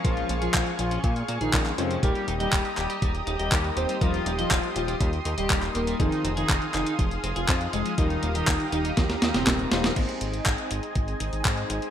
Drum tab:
CC |----------------|----------------|----------------|----------------|
HH |xxxxxxxxxxxxxxxx|xxxxxxxxxxxxxxxx|xxxxxxxxxxxxxxxx|xxxxxxxxxxxxxxxx|
CP |----x-------xx--|----x-x-----x---|----x-------xx--|----x-x-----x---|
SD |----------------|----------------|----------------|----------------|
BD |o---o---o---o---|o---o---o---o---|o---o---o---o---|o---o---o---o---|

CC |----------------|x---------------|
HH |xxxxxxxxxxxxxxxx|xxxxxxxxxxxxxxxx|
CP |----x-------x---|----x-------x---|
SD |--------ooooo-oo|----------------|
BD |o---o---o---o---|o---o---o---o---|